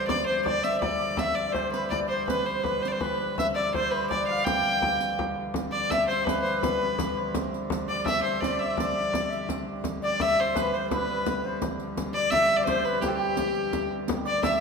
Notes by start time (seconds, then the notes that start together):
Already playing: G2 D3 C5 E5
0.08 D5, riq, frame drum
0.26 C5, frame drum
0.45 D5, riq, frame drum
0.64 E5, riq, frame drum
0.81 D5, frame drum
0.99 D5, riq, frame drum
1.16 G2 E5, riq, frame drum
1.20 D3 F5
1.25 E5
1.35 D5
1.50 C5 D5
1.54 C5, riq, frame drum
1.72 B4, riq, frame drum
1.90 D5, riq, frame drum
2.07 C5
2.27 B4, riq, frame drum
2.44 C5
2.64 B4, riq, frame drum
2.81 C5, riq, frame drum
2.88 C5 D5
3.00 B4, riq, frame drum
3.37 E5, riq, frame drum
3.55 D5
3.74 C5, riq, frame drum
3.91 B4
4.09 D5, riq, frame drum
4.27 F5
4.45 G5, riq, frame drum
4.82 frame drum
5.01 riq
5.19 frame drum
5.54 G2 D3, riq, frame drum
5.72 D5
5.89 E5, riq, frame drum
6.08 C5
6.24 B4, frame drum
6.29 riq
6.42 C5, riq
6.61 B4, riq, frame drum
6.99 riq, frame drum
7.16 C5
7.34 riq, frame drum
7.54 riq
7.70 riq, frame drum
7.88 D5
8.05 E5, riq, frame drum
8.23 C5
8.41 D5, riq, frame drum
8.59 E5, riq
8.70 E5
8.77 D5, riq, frame drum
9.13 riq, frame drum
9.30 E5, riq
9.49 riq, frame drum
9.84 G2 D3, riq, frame drum
10.02 D5
10.20 E5, riq, frame drum
10.39 C5
10.55 B4, riq, frame drum
10.73 C5, riq
10.90 B4, riq, frame drum
11.26 riq, frame drum
11.44 C5
11.62 riq, frame drum
11.80 riq
11.97 riq, frame drum
12.14 D5
12.30 E5, riq, frame drum
12.35 E5
12.57 D5
12.61 D5
12.65 C5, riq, frame drum
12.70 C5
12.85 B4, riq
13.02 G4, riq, frame drum
13.09 A4
13.15 G4
13.37 riq, frame drum
13.55 riq
13.73 riq, frame drum
14.08 G2 D3, riq, frame drum
14.25 D5
14.43 E5, riq, frame drum